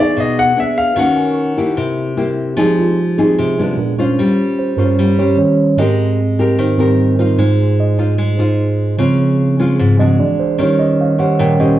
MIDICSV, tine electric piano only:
0, 0, Header, 1, 2, 480
1, 0, Start_track
1, 0, Key_signature, -4, "minor"
1, 0, Tempo, 400802
1, 1160, Time_signature, 4, 2, 24, 8
1, 14123, End_track
2, 0, Start_track
2, 0, Title_t, "Tine electric piano"
2, 0, Program_c, 0, 4
2, 0, Control_c, 0, 64, 127
2, 0, Note_on_c, 0, 85, 43
2, 0, Note_on_c, 0, 88, 40
2, 608, Note_off_c, 0, 85, 0
2, 697, Control_c, 0, 64, 0
2, 756, Note_off_c, 0, 88, 0
2, 1395, Note_on_c, 0, 80, 61
2, 1402, Control_c, 0, 64, 127
2, 1580, Note_on_c, 0, 85, 40
2, 2071, Note_off_c, 0, 80, 0
2, 2111, Note_off_c, 0, 85, 0
2, 2135, Control_c, 0, 64, 0
2, 3075, Note_on_c, 0, 53, 41
2, 3085, Note_on_c, 0, 56, 37
2, 3092, Note_on_c, 0, 63, 45
2, 3099, Note_on_c, 0, 67, 53
2, 3276, Control_c, 0, 64, 127
2, 3324, Note_off_c, 0, 67, 0
2, 3340, Note_on_c, 0, 65, 60
2, 3779, Note_off_c, 0, 65, 0
2, 3806, Note_on_c, 0, 68, 63
2, 4038, Note_off_c, 0, 68, 0
2, 4060, Note_on_c, 0, 68, 55
2, 4473, Note_off_c, 0, 53, 0
2, 4478, Note_off_c, 0, 56, 0
2, 4481, Note_off_c, 0, 63, 0
2, 4499, Note_off_c, 0, 68, 0
2, 4511, Note_on_c, 0, 46, 45
2, 4520, Note_on_c, 0, 56, 37
2, 4532, Note_on_c, 0, 62, 47
2, 4539, Control_c, 0, 64, 0
2, 4540, Note_on_c, 0, 70, 53
2, 4718, Control_c, 0, 64, 127
2, 4837, Note_off_c, 0, 46, 0
2, 4841, Note_off_c, 0, 56, 0
2, 4848, Note_off_c, 0, 62, 0
2, 5017, Control_c, 0, 64, 0
2, 5205, Note_off_c, 0, 70, 0
2, 5211, Control_c, 0, 64, 127
2, 5497, Note_on_c, 0, 72, 60
2, 5708, Note_on_c, 0, 43, 44
2, 5717, Note_on_c, 0, 55, 39
2, 5723, Note_on_c, 0, 70, 66
2, 5725, Note_off_c, 0, 72, 0
2, 5726, Note_on_c, 0, 61, 46
2, 6036, Note_off_c, 0, 43, 0
2, 6041, Note_off_c, 0, 55, 0
2, 6045, Note_off_c, 0, 61, 0
2, 6171, Note_off_c, 0, 70, 0
2, 6211, Note_on_c, 0, 73, 59
2, 6425, Note_on_c, 0, 51, 46
2, 6436, Note_off_c, 0, 73, 0
2, 6438, Note_on_c, 0, 55, 40
2, 6441, Note_on_c, 0, 61, 48
2, 6451, Note_on_c, 0, 73, 60
2, 6464, Control_c, 0, 64, 0
2, 6635, Control_c, 0, 64, 127
2, 6755, Note_off_c, 0, 51, 0
2, 6762, Note_off_c, 0, 55, 0
2, 6763, Note_off_c, 0, 61, 0
2, 6896, Note_off_c, 0, 73, 0
2, 6907, Note_on_c, 0, 44, 42
2, 6924, Note_on_c, 0, 60, 48
2, 6932, Note_on_c, 0, 75, 70
2, 6943, Control_c, 0, 64, 0
2, 7180, Control_c, 0, 64, 127
2, 7602, Note_off_c, 0, 75, 0
2, 7903, Note_on_c, 0, 72, 57
2, 8100, Note_off_c, 0, 44, 0
2, 8108, Note_off_c, 0, 60, 0
2, 8114, Note_on_c, 0, 44, 34
2, 8117, Note_on_c, 0, 55, 32
2, 8123, Note_on_c, 0, 60, 39
2, 8126, Note_on_c, 0, 70, 62
2, 8128, Note_off_c, 0, 72, 0
2, 8336, Note_off_c, 0, 44, 0
2, 8338, Note_off_c, 0, 55, 0
2, 8341, Note_off_c, 0, 60, 0
2, 8573, Note_off_c, 0, 70, 0
2, 8610, Note_on_c, 0, 72, 56
2, 8834, Note_on_c, 0, 44, 45
2, 8842, Note_off_c, 0, 72, 0
2, 8842, Note_on_c, 0, 56, 38
2, 8847, Note_on_c, 0, 63, 49
2, 8856, Note_on_c, 0, 72, 61
2, 8861, Control_c, 0, 64, 0
2, 9102, Control_c, 0, 64, 127
2, 9299, Note_off_c, 0, 72, 0
2, 9340, Note_on_c, 0, 75, 59
2, 10006, Note_off_c, 0, 75, 0
2, 10713, Note_off_c, 0, 44, 0
2, 10716, Note_off_c, 0, 56, 0
2, 10719, Note_off_c, 0, 63, 0
2, 10753, Note_on_c, 0, 49, 43
2, 10760, Note_on_c, 0, 53, 38
2, 10768, Note_on_c, 0, 60, 47
2, 10785, Control_c, 0, 64, 0
2, 10963, Control_c, 0, 64, 127
2, 11948, Note_off_c, 0, 53, 0
2, 11951, Note_off_c, 0, 49, 0
2, 11955, Note_off_c, 0, 60, 0
2, 11963, Note_on_c, 0, 53, 33
2, 11966, Note_on_c, 0, 49, 37
2, 11969, Note_on_c, 0, 60, 39
2, 11970, Note_on_c, 0, 75, 72
2, 12180, Note_off_c, 0, 53, 0
2, 12181, Note_off_c, 0, 49, 0
2, 12184, Note_off_c, 0, 60, 0
2, 12190, Note_on_c, 0, 52, 45
2, 12194, Note_on_c, 0, 56, 41
2, 12200, Note_off_c, 0, 75, 0
2, 12207, Note_on_c, 0, 62, 47
2, 12214, Note_on_c, 0, 74, 63
2, 12222, Control_c, 0, 64, 0
2, 12396, Control_c, 0, 64, 127
2, 12442, Note_off_c, 0, 74, 0
2, 12451, Note_on_c, 0, 72, 73
2, 12653, Note_off_c, 0, 52, 0
2, 12655, Note_off_c, 0, 56, 0
2, 12662, Note_off_c, 0, 62, 0
2, 12673, Note_on_c, 0, 51, 42
2, 12680, Note_on_c, 0, 55, 41
2, 12681, Note_off_c, 0, 72, 0
2, 12689, Note_on_c, 0, 61, 47
2, 12694, Note_on_c, 0, 73, 63
2, 12700, Control_c, 0, 64, 0
2, 12901, Control_c, 0, 64, 127
2, 12922, Note_off_c, 0, 73, 0
2, 12927, Note_on_c, 0, 75, 74
2, 13158, Note_off_c, 0, 75, 0
2, 13185, Note_on_c, 0, 77, 61
2, 13362, Note_off_c, 0, 51, 0
2, 13365, Note_off_c, 0, 55, 0
2, 13370, Note_off_c, 0, 61, 0
2, 13407, Note_off_c, 0, 77, 0
2, 13409, Note_on_c, 0, 78, 74
2, 13639, Note_off_c, 0, 78, 0
2, 13642, Note_on_c, 0, 51, 41
2, 13644, Note_on_c, 0, 55, 35
2, 13656, Note_on_c, 0, 61, 43
2, 13662, Note_on_c, 0, 79, 78
2, 13858, Note_off_c, 0, 51, 0
2, 13859, Note_off_c, 0, 55, 0
2, 13866, Note_off_c, 0, 61, 0
2, 13885, Note_off_c, 0, 79, 0
2, 13888, Note_on_c, 0, 75, 66
2, 14118, Note_off_c, 0, 75, 0
2, 14123, End_track
0, 0, End_of_file